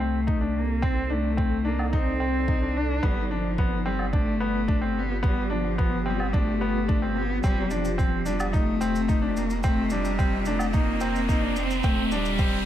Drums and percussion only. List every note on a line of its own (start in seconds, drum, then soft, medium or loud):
0.28 kick medium
0.83 kick medium
1.38 kick medium
1.79 low woodblock medium
1.93 kick medium
2.48 kick loud
3.03 kick medium
3.58 kick medium
3.99 low woodblock medium
4.13 kick loud
4.69 kick loud
5.24 kick loud
5.79 kick medium
6.20 low woodblock medium
6.34 kick loud
6.89 kick loud
7.43 kick loud
7.43 shaker soft
7.71 shaker medium
7.85 shaker medium
7.99 kick medium
7.99 shaker soft
8.26 shaker medium
8.40 low woodblock medium
8.40 shaker medium
8.54 kick loud
8.54 shaker soft
8.81 shaker medium
8.95 shaker medium
9.09 kick loud
9.09 shaker soft
9.37 shaker medium
9.50 shaker medium
9.63 kick loud
9.63 shaker soft
9.90 shaker medium
10.05 shaker medium
10.19 kick medium
10.19 shaker soft
10.45 shaker medium
10.59 low woodblock medium
10.59 shaker medium
10.73 kick loud
10.73 shaker soft
11.00 shaker medium
11.16 shaker soft
11.29 kick medium
11.29 shaker medium
11.56 shaker medium
11.70 shaker medium
11.83 kick loud
11.83 shaker soft
12.11 shaker medium
12.25 shaker medium
12.39 kick medium
12.39 shaker soft